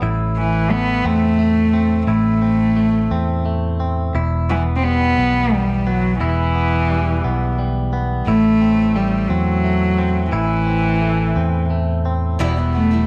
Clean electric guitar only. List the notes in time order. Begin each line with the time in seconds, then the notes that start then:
0.02 A2 E4
0.70 A3
1.05 C4
1.39 A3
1.73 C4
2.07 A2 E4
2.42 C4
2.76 A3
3.11 C4
3.46 A3
3.80 C4
4.15 E2 E4
4.50 B3
4.84 G3
5.18 B3
5.87 B3
6.20 E2 E4
6.55 B3
6.90 G3
7.24 B3
7.59 G3
7.93 B3
8.27 A2 E4
8.61 C4
8.96 A3
9.30 C4
9.64 A3
9.98 C4
10.32 A2 E4
10.67 C4
11.02 A3
11.36 C4
11.70 A3
12.05 C4
12.40 E2 E4
12.75 B3